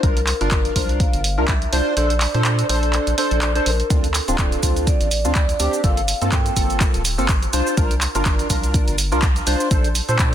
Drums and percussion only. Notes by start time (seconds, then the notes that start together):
0.03 kick, closed hi-hat
0.17 closed hi-hat
0.27 clap, open hi-hat
0.41 closed hi-hat
0.51 kick, clap, closed hi-hat
0.65 closed hi-hat
0.76 kick, open hi-hat
0.89 closed hi-hat
1.00 kick, closed hi-hat
1.13 closed hi-hat
1.24 open hi-hat
1.48 kick, clap, closed hi-hat
1.62 closed hi-hat
1.73 open hi-hat
1.97 closed hi-hat
2.10 closed hi-hat
2.21 clap, open hi-hat
2.34 closed hi-hat
2.45 clap, closed hi-hat
2.59 closed hi-hat
2.69 open hi-hat
2.83 closed hi-hat
2.93 clap, closed hi-hat
3.07 closed hi-hat
3.18 open hi-hat
3.31 closed hi-hat
3.42 clap, closed hi-hat
3.55 closed hi-hat
3.66 open hi-hat
3.80 closed hi-hat
3.90 kick, closed hi-hat, cabasa
4.04 closed hi-hat, cabasa
4.14 clap, open hi-hat, cabasa
4.28 closed hi-hat, cabasa
4.38 kick, clap, closed hi-hat, cabasa
4.52 closed hi-hat, cabasa
4.63 kick, open hi-hat, cabasa
4.76 closed hi-hat, cabasa
4.87 kick, closed hi-hat, cabasa
5.01 closed hi-hat, cabasa
5.11 open hi-hat, cabasa
5.25 cabasa
5.35 kick, clap, closed hi-hat, cabasa
5.49 closed hi-hat, cabasa
5.60 open hi-hat, cabasa
5.73 cabasa
5.84 kick, closed hi-hat, cabasa
5.97 closed hi-hat, cabasa
6.08 open hi-hat, cabasa
6.22 closed hi-hat, cabasa
6.32 kick, clap, closed hi-hat, cabasa
6.46 closed hi-hat, cabasa
6.56 kick, open hi-hat, cabasa
6.70 closed hi-hat, cabasa
6.80 kick, clap, closed hi-hat, cabasa
6.94 closed hi-hat, cabasa
7.05 open hi-hat, cabasa
7.18 cabasa
7.29 kick, clap, closed hi-hat, cabasa
7.43 closed hi-hat, cabasa
7.53 open hi-hat, cabasa
7.67 cabasa
7.77 kick, closed hi-hat, cabasa
7.91 closed hi-hat, cabasa
8.01 clap, open hi-hat, cabasa
8.15 closed hi-hat, cabasa
8.25 kick, clap, closed hi-hat, cabasa
8.39 closed hi-hat, cabasa
8.50 kick, open hi-hat, cabasa
8.63 closed hi-hat, cabasa
8.74 kick, closed hi-hat, cabasa
8.88 closed hi-hat, cabasa
8.98 open hi-hat, cabasa
9.12 cabasa
9.22 kick, clap, closed hi-hat, cabasa
9.36 closed hi-hat, cabasa
9.47 open hi-hat, cabasa
9.60 cabasa
9.71 kick, closed hi-hat, cabasa
9.84 closed hi-hat, cabasa
9.95 open hi-hat, cabasa
10.09 closed hi-hat, cabasa
10.19 kick, clap, closed hi-hat, cabasa